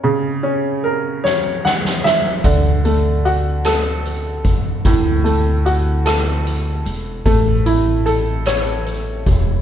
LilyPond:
<<
  \new Staff \with { instrumentName = "Upright piano" } { \time 6/8 \key d \major \tempo 4. = 50 << { r2 fis''8 e''8 | r2. | r2. | r2. | } \\ { <cis cis''>8 cis'8 ais'8 cis''4. | d8 a8 fis'8 a'4. | a,8 a8 fis'8 a'4. | a8 e'8 a'8 cis''4. | } >> }
  \new Staff \with { instrumentName = "Upright bass" } { \clef bass \time 6/8 \key d \major r2. | d,2~ d,8 a,,8 | d,2~ d,8 e,,8 | a,,2~ a,,8 e,,8 | }
  \new DrumStaff \with { instrumentName = "Drums" } \drummode { \time 6/8 r4. sn8 sn16 sn16 sn8 | <hh bd>8 hh8 hh8 <hh ss>8 hh8 <hh bd>8 | <hh bd>8 hh8 hh8 <hh ss>8 hh8 hh8 | <hh bd>8 hh8 hh8 <hh ss>8 hh8 <hh bd>8 | }
>>